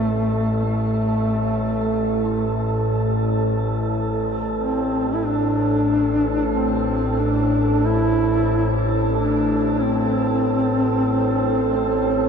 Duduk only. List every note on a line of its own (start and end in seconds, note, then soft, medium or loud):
0.00 0.62 A3 medium
0.65 2.58 A3 medium
4.59 5.16 C4 medium
5.15 5.27 E4 medium
5.25 6.57 D4 loud
6.56 7.21 C4 medium
7.19 7.87 D4 loud
7.86 8.88 E4 loud
9.15 9.84 D4 medium
9.82 12.29 C4 medium